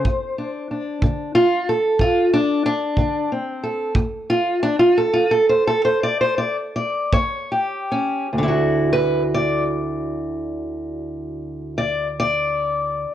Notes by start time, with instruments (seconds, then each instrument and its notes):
Already playing: steel-string acoustic guitar C5
0.05 steel-string acoustic guitar D2, kick
0.38 steel-string acoustic guitar D4
0.71 steel-string acoustic guitar D4
1.02 steel-string acoustic guitar D3, kick
1.35 steel-string acoustic guitar F4
1.69 steel-string acoustic guitar A4
1.99 steel-string acoustic guitar D2 F4, kick
2.34 steel-string acoustic guitar D4
2.66 steel-string acoustic guitar D4
2.97 steel-string acoustic guitar D3, kick
3.32 steel-string acoustic guitar C4
3.64 steel-string acoustic guitar A4
3.95 steel-string acoustic guitar D2, kick
4.30 steel-string acoustic guitar F4
4.63 steel-string acoustic guitar D4
4.79 steel-string acoustic guitar F4
4.98 steel-string acoustic guitar A4
5.13 steel-string acoustic guitar F4
5.31 steel-string acoustic guitar A4
5.49 steel-string acoustic guitar C5
5.67 steel-string acoustic guitar A4
5.85 steel-string acoustic guitar C5
6.03 steel-string acoustic guitar D5
6.21 steel-string acoustic guitar C5
6.38 steel-string acoustic guitar D5
6.76 steel-string acoustic guitar D5
7.12 steel-string acoustic guitar D#2 C#5, kick
7.52 steel-string acoustic guitar G4
7.92 steel-string acoustic guitar C#4
8.33 steel-string acoustic guitar D2
8.38 steel-string acoustic guitar D3
8.43 steel-string acoustic guitar E4
8.48 steel-string acoustic guitar F#4
8.93 steel-string acoustic guitar B4
9.34 steel-string acoustic guitar D5
11.78 steel-string acoustic guitar D5
12.20 steel-string acoustic guitar D5